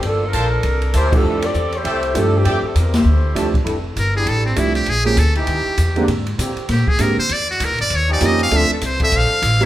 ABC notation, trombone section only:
X:1
M:4/4
L:1/8
Q:"Swing" 1/4=198
K:F
V:1 name="Trombone section"
z8 | z8 | z8 | [G,DEA] z2 [G,DEG]3 z2 |
z3 [E,_D_EG]3 z [=D,B,C=D] | z2 [D,B,CG]3 z3 | z4 z [F,_D_EG]3 | [F,CDA] z2 [F,CDA]3 z2 |]